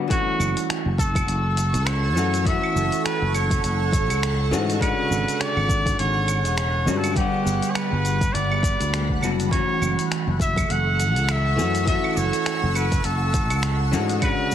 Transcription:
0.08 E3 A3 F#4 A4 F#5 C#6 E6, kick, closed hi-hat
0.12 C#4 F#4, shaker
0.39 F#1, claves, shaker
0.57 closed hi-hat, shaker
0.70 finger snap, closed hi-hat, shaker
0.85 F#1
0.98 A4, kick, closed hi-hat, shaker
1.15 kick, closed hi-hat, claves, shaker
1.27 F#1, closed hi-hat, shaker
1.57 closed hi-hat, shaker
1.74 C#2, closed hi-hat, shaker
1.87 C#5, finger snap, closed hi-hat, claves, shaker
2.16 F#2 E3 A3 C#4 F#4, shaker
2.34 closed hi-hat, shaker
2.44 E3 A3 C#4 E5, kick, closed hi-hat, shaker
2.50 F#4
2.63 claves
2.75 F#1, shaker
2.92 closed hi-hat, shaker
3.05 B4, finger snap, closed hi-hat, shaker
3.22 F#1
3.34 C#5, closed hi-hat, claves, shaker
3.51 kick, closed hi-hat, shaker
3.64 F#1 C#5, closed hi-hat, shaker
3.93 kick, closed hi-hat, shaker
4.10 C#2, closed hi-hat, claves, shaker
4.23 finger snap, closed hi-hat, shaker
4.51 G#2 E3 A3 C#4 F#4, shaker
4.70 closed hi-hat, shaker
4.79 C#3 D3 G#3 G#4 B4, kick, closed hi-hat, claves
4.83 F#4, shaker
5.10 G#1, shaker
5.28 closed hi-hat, shaker
5.41 D5, finger snap, closed hi-hat, shaker
5.56 G#1, claves
5.69 kick, closed hi-hat, shaker
5.86 kick, closed hi-hat, shaker
5.99 G#1 C#5, closed hi-hat, shaker
6.28 closed hi-hat, claves, shaker
6.45 E1, closed hi-hat, shaker
6.57 C#5, finger snap, closed hi-hat, shaker
6.86 G2 D3 G#3 C#4 F#4, shaker
6.98 A4
7.04 closed hi-hat, claves, shaker
7.14 D3 G3 B3 G4 B5, kick, closed hi-hat, shaker
7.20 F#5
7.46 G1, shaker
7.62 closed hi-hat, shaker
7.71 C#5
7.75 B4, finger snap, closed hi-hat, claves, shaker
7.92 G1
8.05 closed hi-hat, shaker
8.21 kick, closed hi-hat, shaker
8.33 G1 D5, closed hi-hat, shaker
8.52 claves
8.63 kick, closed hi-hat, shaker
8.80 D2, closed hi-hat, shaker
8.94 finger snap, closed hi-hat, shaker
9.09 kick
9.21 F#1 D3 G3 B3 F#4, claves, shaker
9.40 closed hi-hat, shaker
9.49 E3 A3 C#4 A4 C#5 C#6 E6, kick, closed hi-hat
9.53 F#4, shaker
9.81 F#1, claves, shaker
9.99 closed hi-hat, shaker
10.12 finger snap, closed hi-hat, shaker
10.27 F#1
10.40 E5, kick, closed hi-hat, shaker
10.56 kick, closed hi-hat, claves, shaker
10.69 F#1 F#5, closed hi-hat, shaker
11.00 closed hi-hat, shaker
11.15 C#2, closed hi-hat, shaker
11.29 E5, finger snap, closed hi-hat, claves, shaker
11.56 F#2 E3 A3 C#4 F#4, shaker
11.75 closed hi-hat, shaker
11.84 E3 A3 E5, kick, closed hi-hat
11.88 C#4 F#4, shaker
12.04 claves
12.17 F#1 C#5, shaker
12.33 closed hi-hat, shaker
12.46 finger snap, closed hi-hat, shaker
12.63 F#1
12.75 B4, closed hi-hat, claves, shaker
12.92 kick, closed hi-hat, shaker
13.04 F#1 A4, closed hi-hat, shaker
13.34 kick, closed hi-hat, shaker
13.50 C#2, closed hi-hat, claves, shaker
13.63 finger snap, closed hi-hat, shaker
13.91 G#2 E3 A3 C#4 F#4, shaker
14.09 closed hi-hat, shaker
14.19 D3 G#3, kick, closed hi-hat, claves, shaker
14.23 C#3 F#4 B4
14.52 shaker

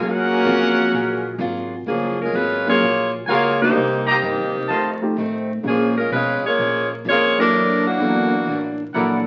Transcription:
Already playing: C#3 F#3 G#3 A#3
0.00 F#2 A#3 C#4 F4 F#4 G#4 A#4 F#5
0.44 F2 F#3 A#3 F4 G#4
0.92 A#1 F#3 A#3 F4 G#4
1.38 G#1 F#3 A#3 F4 G#4
1.86 F#1 F3 F#3 A#3 C#4 F4 G#4
2.22 G#3 C#4 F4 A#4
2.33 G#1 F#3 G#3 A#3 C#4 F4 G#4 B4
2.65 F#3 A#3 C#4 F4 G#4
2.70 C#5
2.80 A#1 F#3 A#3 F4 G#4
3.27 C#2 F#3 A#3 F4 F#4 G#4 A#4 C#5 F5 G#5
3.60 A#3 C4 D4 D#4 G4 A#4 C5
3.74 C2 C3 G3 A#3 D#4
4.06 G4 C5 D#5 A#5
4.10 D#3 A#3 C4 G4
4.21 G2 C3 G3 A#3 D#4
4.38 D#2
4.53 C2
4.68 F2 D#3 A3 C4 F4 C5 D#5 A5
5.01 A3 C4 D#4 F4 G4
5.16 F2 A2 D#3 A3 C4
5.63 A#2 F3 G#3 A#3 C#4 F4 G#4
5.67 F3 A#3 C#4 G#4
5.97 G#3 C#4 F4 A#4
6.10 A#2 B2 F3 G#3 C#4 F4 B4
6.46 A#3 F4 G#4 C#5
6.57 A#2 F3 G#3 C#4
7.05 F2 A#2 F3 G#3 A#3 C#4 F4 C#5
7.09 G#4
7.37 E3 F#3 A#3 D4 E4 A4 A#4 C#5
7.52 F#2 E3 A#3 D4
7.87 E3 A#3 D4 F#4
7.99 E2 F#2 E3 F#3 A#3 D4 E4 A4
8.46 A1 F#2 E3 A#3 D4
8.94 A#1 F#2 E3 F#3 A#3 D4 E4 A4 A#4 D5 F#5

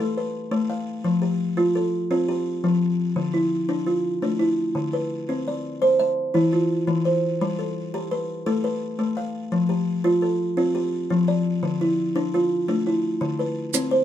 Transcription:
Already playing: B4
0.00 A3 A4
0.18 B4
0.51 A3
0.70 F5
1.04 F3
1.22 G4
1.57 F4
1.75 A4
2.11 C4 F4
2.28 G4
2.64 F3
3.16 D3
3.34 E4
3.69 D4
3.87 F4
4.22 A3 D4
4.39 E4
4.75 D3
4.93 B4
5.29 C4
5.48 D5
5.82 C5
5.99 E5
6.34 E3 E4
6.53 F4
6.87 E3
7.05 C5
7.41 G3
7.59 A4
7.94 G4
8.11 B4
8.46 A3 A4
8.64 B4
8.99 A3
9.17 F5
9.52 F3
9.69 G4
10.04 F4
10.22 A4
10.57 C4 F4
10.75 G4
11.10 F3
11.28 D5
11.63 D3
11.81 E4
12.16 D4
12.34 F4
12.68 A3 D4
12.87 E4
13.21 D3
13.39 B4
13.74 C4, maracas
13.91 C5

